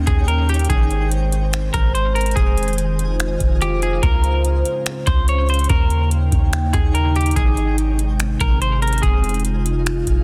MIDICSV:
0, 0, Header, 1, 6, 480
1, 0, Start_track
1, 0, Key_signature, -4, "major"
1, 0, Tempo, 416667
1, 803, Time_signature, 4, 2, 24, 8
1, 11793, End_track
2, 0, Start_track
2, 0, Title_t, "Clean electric guitar"
2, 0, Program_c, 0, 27
2, 82, Note_on_c, 0, 68, 91
2, 311, Note_off_c, 0, 68, 0
2, 321, Note_on_c, 0, 70, 75
2, 550, Note_off_c, 0, 70, 0
2, 569, Note_on_c, 0, 67, 88
2, 794, Note_off_c, 0, 67, 0
2, 802, Note_on_c, 0, 68, 98
2, 1254, Note_off_c, 0, 68, 0
2, 2004, Note_on_c, 0, 70, 83
2, 2232, Note_off_c, 0, 70, 0
2, 2242, Note_on_c, 0, 72, 73
2, 2470, Note_off_c, 0, 72, 0
2, 2479, Note_on_c, 0, 70, 80
2, 2709, Note_off_c, 0, 70, 0
2, 2716, Note_on_c, 0, 68, 102
2, 3171, Note_off_c, 0, 68, 0
2, 4169, Note_on_c, 0, 67, 81
2, 4394, Note_off_c, 0, 67, 0
2, 4409, Note_on_c, 0, 68, 83
2, 4634, Note_off_c, 0, 68, 0
2, 4641, Note_on_c, 0, 70, 103
2, 5093, Note_off_c, 0, 70, 0
2, 5843, Note_on_c, 0, 72, 89
2, 6071, Note_off_c, 0, 72, 0
2, 6092, Note_on_c, 0, 73, 72
2, 6316, Note_off_c, 0, 73, 0
2, 6333, Note_on_c, 0, 72, 81
2, 6556, Note_off_c, 0, 72, 0
2, 6562, Note_on_c, 0, 70, 101
2, 7014, Note_off_c, 0, 70, 0
2, 7765, Note_on_c, 0, 68, 90
2, 7992, Note_off_c, 0, 68, 0
2, 8001, Note_on_c, 0, 70, 77
2, 8230, Note_off_c, 0, 70, 0
2, 8250, Note_on_c, 0, 67, 91
2, 8475, Note_off_c, 0, 67, 0
2, 8481, Note_on_c, 0, 68, 101
2, 8933, Note_off_c, 0, 68, 0
2, 9687, Note_on_c, 0, 70, 83
2, 9913, Note_off_c, 0, 70, 0
2, 9926, Note_on_c, 0, 72, 73
2, 10153, Note_off_c, 0, 72, 0
2, 10163, Note_on_c, 0, 70, 78
2, 10391, Note_off_c, 0, 70, 0
2, 10397, Note_on_c, 0, 68, 96
2, 10851, Note_off_c, 0, 68, 0
2, 11793, End_track
3, 0, Start_track
3, 0, Title_t, "Synth texture"
3, 0, Program_c, 1, 99
3, 0, Note_on_c, 1, 63, 80
3, 0, Note_on_c, 1, 73, 75
3, 0, Note_on_c, 1, 79, 89
3, 783, Note_off_c, 1, 73, 0
3, 785, Note_off_c, 1, 63, 0
3, 801, Note_on_c, 1, 60, 79
3, 803, Note_on_c, 1, 68, 73
3, 2685, Note_off_c, 1, 79, 0
3, 2703, Note_off_c, 1, 60, 0
3, 2726, Note_on_c, 1, 63, 82
3, 2727, Note_on_c, 1, 77, 92
3, 4605, Note_off_c, 1, 68, 0
3, 4625, Note_off_c, 1, 63, 0
3, 4643, Note_on_c, 1, 61, 82
3, 4643, Note_on_c, 1, 72, 70
3, 6527, Note_off_c, 1, 77, 0
3, 6544, Note_off_c, 1, 61, 0
3, 6544, Note_off_c, 1, 72, 0
3, 6563, Note_on_c, 1, 63, 76
3, 6564, Note_on_c, 1, 73, 74
3, 6564, Note_on_c, 1, 79, 87
3, 8464, Note_off_c, 1, 63, 0
3, 8464, Note_off_c, 1, 73, 0
3, 8487, Note_on_c, 1, 60, 84
3, 8488, Note_on_c, 1, 68, 75
3, 10365, Note_off_c, 1, 79, 0
3, 10386, Note_off_c, 1, 60, 0
3, 10386, Note_off_c, 1, 68, 0
3, 10402, Note_on_c, 1, 68, 73
3, 10403, Note_on_c, 1, 77, 88
3, 10405, Note_on_c, 1, 63, 83
3, 11793, Note_off_c, 1, 63, 0
3, 11793, Note_off_c, 1, 68, 0
3, 11793, Note_off_c, 1, 77, 0
3, 11793, End_track
4, 0, Start_track
4, 0, Title_t, "Analog synth pad"
4, 0, Program_c, 2, 89
4, 0, Note_on_c, 2, 51, 83
4, 0, Note_on_c, 2, 58, 77
4, 0, Note_on_c, 2, 61, 78
4, 0, Note_on_c, 2, 79, 99
4, 786, Note_off_c, 2, 58, 0
4, 786, Note_off_c, 2, 61, 0
4, 805, Note_on_c, 2, 72, 82
4, 806, Note_on_c, 2, 56, 83
4, 2686, Note_off_c, 2, 51, 0
4, 2686, Note_off_c, 2, 79, 0
4, 2726, Note_on_c, 2, 51, 86
4, 2727, Note_on_c, 2, 65, 92
4, 4626, Note_off_c, 2, 51, 0
4, 4641, Note_on_c, 2, 49, 86
4, 6518, Note_off_c, 2, 56, 0
4, 6518, Note_off_c, 2, 72, 0
4, 6527, Note_off_c, 2, 65, 0
4, 6563, Note_on_c, 2, 79, 95
4, 6564, Note_on_c, 2, 58, 82
4, 6564, Note_on_c, 2, 63, 80
4, 8444, Note_off_c, 2, 49, 0
4, 8464, Note_off_c, 2, 58, 0
4, 8484, Note_on_c, 2, 48, 84
4, 8485, Note_on_c, 2, 56, 80
4, 10365, Note_off_c, 2, 63, 0
4, 10365, Note_off_c, 2, 79, 0
4, 10404, Note_on_c, 2, 63, 79
4, 10405, Note_on_c, 2, 65, 96
4, 11793, Note_off_c, 2, 48, 0
4, 11793, Note_off_c, 2, 56, 0
4, 11793, Note_off_c, 2, 63, 0
4, 11793, Note_off_c, 2, 65, 0
4, 11793, End_track
5, 0, Start_track
5, 0, Title_t, "808-style bass"
5, 0, Program_c, 3, 38
5, 82, Note_on_c, 3, 39, 105
5, 774, Note_off_c, 3, 39, 0
5, 804, Note_on_c, 3, 32, 113
5, 1957, Note_off_c, 3, 32, 0
5, 2005, Note_on_c, 3, 32, 101
5, 2695, Note_off_c, 3, 32, 0
5, 2725, Note_on_c, 3, 29, 112
5, 3878, Note_off_c, 3, 29, 0
5, 3924, Note_on_c, 3, 29, 107
5, 4615, Note_off_c, 3, 29, 0
5, 4643, Note_on_c, 3, 37, 108
5, 5334, Note_off_c, 3, 37, 0
5, 5841, Note_on_c, 3, 37, 107
5, 6533, Note_off_c, 3, 37, 0
5, 6563, Note_on_c, 3, 39, 111
5, 7254, Note_off_c, 3, 39, 0
5, 7282, Note_on_c, 3, 39, 101
5, 7743, Note_off_c, 3, 39, 0
5, 7762, Note_on_c, 3, 39, 105
5, 8454, Note_off_c, 3, 39, 0
5, 8484, Note_on_c, 3, 32, 114
5, 9637, Note_off_c, 3, 32, 0
5, 9684, Note_on_c, 3, 32, 102
5, 10375, Note_off_c, 3, 32, 0
5, 10404, Note_on_c, 3, 29, 113
5, 11558, Note_off_c, 3, 29, 0
5, 11604, Note_on_c, 3, 29, 102
5, 11793, Note_off_c, 3, 29, 0
5, 11793, End_track
6, 0, Start_track
6, 0, Title_t, "Drums"
6, 80, Note_on_c, 9, 42, 81
6, 83, Note_on_c, 9, 36, 93
6, 195, Note_off_c, 9, 42, 0
6, 198, Note_off_c, 9, 36, 0
6, 324, Note_on_c, 9, 42, 81
6, 439, Note_off_c, 9, 42, 0
6, 564, Note_on_c, 9, 42, 39
6, 624, Note_off_c, 9, 42, 0
6, 624, Note_on_c, 9, 42, 47
6, 684, Note_off_c, 9, 42, 0
6, 684, Note_on_c, 9, 42, 58
6, 744, Note_off_c, 9, 42, 0
6, 744, Note_on_c, 9, 42, 64
6, 804, Note_off_c, 9, 42, 0
6, 804, Note_on_c, 9, 36, 122
6, 804, Note_on_c, 9, 42, 71
6, 919, Note_off_c, 9, 36, 0
6, 920, Note_off_c, 9, 42, 0
6, 1043, Note_on_c, 9, 42, 59
6, 1158, Note_off_c, 9, 42, 0
6, 1284, Note_on_c, 9, 42, 83
6, 1400, Note_off_c, 9, 42, 0
6, 1526, Note_on_c, 9, 42, 74
6, 1641, Note_off_c, 9, 42, 0
6, 1764, Note_on_c, 9, 42, 78
6, 1770, Note_on_c, 9, 26, 105
6, 1879, Note_off_c, 9, 42, 0
6, 1885, Note_off_c, 9, 26, 0
6, 2002, Note_on_c, 9, 42, 78
6, 2004, Note_on_c, 9, 36, 95
6, 2117, Note_off_c, 9, 42, 0
6, 2120, Note_off_c, 9, 36, 0
6, 2247, Note_on_c, 9, 42, 81
6, 2363, Note_off_c, 9, 42, 0
6, 2486, Note_on_c, 9, 42, 39
6, 2545, Note_off_c, 9, 42, 0
6, 2545, Note_on_c, 9, 42, 47
6, 2605, Note_off_c, 9, 42, 0
6, 2605, Note_on_c, 9, 42, 58
6, 2665, Note_off_c, 9, 42, 0
6, 2665, Note_on_c, 9, 42, 66
6, 2726, Note_on_c, 9, 36, 123
6, 2727, Note_off_c, 9, 42, 0
6, 2727, Note_on_c, 9, 42, 69
6, 2841, Note_off_c, 9, 36, 0
6, 2842, Note_off_c, 9, 42, 0
6, 2966, Note_on_c, 9, 42, 61
6, 3026, Note_off_c, 9, 42, 0
6, 3026, Note_on_c, 9, 42, 53
6, 3086, Note_off_c, 9, 42, 0
6, 3086, Note_on_c, 9, 42, 45
6, 3145, Note_off_c, 9, 42, 0
6, 3145, Note_on_c, 9, 42, 37
6, 3205, Note_off_c, 9, 42, 0
6, 3205, Note_on_c, 9, 42, 82
6, 3320, Note_off_c, 9, 42, 0
6, 3446, Note_on_c, 9, 42, 72
6, 3562, Note_off_c, 9, 42, 0
6, 3683, Note_on_c, 9, 42, 76
6, 3689, Note_on_c, 9, 26, 100
6, 3798, Note_off_c, 9, 42, 0
6, 3804, Note_off_c, 9, 26, 0
6, 3922, Note_on_c, 9, 42, 81
6, 3924, Note_on_c, 9, 36, 99
6, 4037, Note_off_c, 9, 42, 0
6, 4039, Note_off_c, 9, 36, 0
6, 4164, Note_on_c, 9, 42, 76
6, 4280, Note_off_c, 9, 42, 0
6, 4403, Note_on_c, 9, 42, 62
6, 4518, Note_off_c, 9, 42, 0
6, 4642, Note_on_c, 9, 42, 71
6, 4643, Note_on_c, 9, 36, 123
6, 4757, Note_off_c, 9, 42, 0
6, 4758, Note_off_c, 9, 36, 0
6, 4881, Note_on_c, 9, 42, 60
6, 4996, Note_off_c, 9, 42, 0
6, 5122, Note_on_c, 9, 42, 80
6, 5237, Note_off_c, 9, 42, 0
6, 5362, Note_on_c, 9, 42, 74
6, 5477, Note_off_c, 9, 42, 0
6, 5598, Note_on_c, 9, 42, 82
6, 5604, Note_on_c, 9, 26, 102
6, 5713, Note_off_c, 9, 42, 0
6, 5719, Note_off_c, 9, 26, 0
6, 5838, Note_on_c, 9, 42, 80
6, 5841, Note_on_c, 9, 36, 97
6, 5953, Note_off_c, 9, 42, 0
6, 5957, Note_off_c, 9, 36, 0
6, 6081, Note_on_c, 9, 42, 78
6, 6196, Note_off_c, 9, 42, 0
6, 6321, Note_on_c, 9, 42, 36
6, 6380, Note_off_c, 9, 42, 0
6, 6380, Note_on_c, 9, 42, 48
6, 6440, Note_off_c, 9, 42, 0
6, 6440, Note_on_c, 9, 42, 57
6, 6500, Note_off_c, 9, 42, 0
6, 6500, Note_on_c, 9, 42, 66
6, 6560, Note_off_c, 9, 42, 0
6, 6560, Note_on_c, 9, 42, 70
6, 6562, Note_on_c, 9, 36, 122
6, 6675, Note_off_c, 9, 42, 0
6, 6677, Note_off_c, 9, 36, 0
6, 6801, Note_on_c, 9, 42, 58
6, 6916, Note_off_c, 9, 42, 0
6, 7042, Note_on_c, 9, 42, 84
6, 7157, Note_off_c, 9, 42, 0
6, 7282, Note_on_c, 9, 36, 88
6, 7283, Note_on_c, 9, 42, 75
6, 7397, Note_off_c, 9, 36, 0
6, 7398, Note_off_c, 9, 42, 0
6, 7520, Note_on_c, 9, 42, 76
6, 7526, Note_on_c, 9, 26, 104
6, 7635, Note_off_c, 9, 42, 0
6, 7641, Note_off_c, 9, 26, 0
6, 7759, Note_on_c, 9, 42, 80
6, 7762, Note_on_c, 9, 36, 93
6, 7874, Note_off_c, 9, 42, 0
6, 7878, Note_off_c, 9, 36, 0
6, 8004, Note_on_c, 9, 42, 81
6, 8120, Note_off_c, 9, 42, 0
6, 8244, Note_on_c, 9, 42, 38
6, 8302, Note_off_c, 9, 42, 0
6, 8302, Note_on_c, 9, 42, 48
6, 8363, Note_off_c, 9, 42, 0
6, 8363, Note_on_c, 9, 42, 54
6, 8424, Note_off_c, 9, 42, 0
6, 8424, Note_on_c, 9, 42, 64
6, 8484, Note_off_c, 9, 42, 0
6, 8484, Note_on_c, 9, 36, 122
6, 8484, Note_on_c, 9, 42, 71
6, 8599, Note_off_c, 9, 36, 0
6, 8599, Note_off_c, 9, 42, 0
6, 8723, Note_on_c, 9, 42, 59
6, 8838, Note_off_c, 9, 42, 0
6, 8963, Note_on_c, 9, 42, 82
6, 9079, Note_off_c, 9, 42, 0
6, 9205, Note_on_c, 9, 42, 72
6, 9320, Note_off_c, 9, 42, 0
6, 9442, Note_on_c, 9, 42, 80
6, 9448, Note_on_c, 9, 26, 99
6, 9557, Note_off_c, 9, 42, 0
6, 9563, Note_off_c, 9, 26, 0
6, 9682, Note_on_c, 9, 42, 81
6, 9683, Note_on_c, 9, 36, 94
6, 9797, Note_off_c, 9, 42, 0
6, 9799, Note_off_c, 9, 36, 0
6, 9926, Note_on_c, 9, 42, 80
6, 10041, Note_off_c, 9, 42, 0
6, 10164, Note_on_c, 9, 42, 38
6, 10224, Note_off_c, 9, 42, 0
6, 10224, Note_on_c, 9, 42, 46
6, 10283, Note_off_c, 9, 42, 0
6, 10283, Note_on_c, 9, 42, 57
6, 10343, Note_off_c, 9, 42, 0
6, 10343, Note_on_c, 9, 42, 64
6, 10404, Note_off_c, 9, 42, 0
6, 10404, Note_on_c, 9, 36, 119
6, 10404, Note_on_c, 9, 42, 71
6, 10519, Note_off_c, 9, 36, 0
6, 10519, Note_off_c, 9, 42, 0
6, 10643, Note_on_c, 9, 42, 57
6, 10704, Note_off_c, 9, 42, 0
6, 10704, Note_on_c, 9, 42, 53
6, 10763, Note_off_c, 9, 42, 0
6, 10763, Note_on_c, 9, 42, 43
6, 10824, Note_off_c, 9, 42, 0
6, 10824, Note_on_c, 9, 42, 35
6, 10883, Note_off_c, 9, 42, 0
6, 10883, Note_on_c, 9, 42, 82
6, 10998, Note_off_c, 9, 42, 0
6, 11125, Note_on_c, 9, 42, 76
6, 11240, Note_off_c, 9, 42, 0
6, 11362, Note_on_c, 9, 42, 76
6, 11368, Note_on_c, 9, 26, 105
6, 11477, Note_off_c, 9, 42, 0
6, 11483, Note_off_c, 9, 26, 0
6, 11601, Note_on_c, 9, 42, 79
6, 11603, Note_on_c, 9, 36, 90
6, 11717, Note_off_c, 9, 42, 0
6, 11718, Note_off_c, 9, 36, 0
6, 11793, End_track
0, 0, End_of_file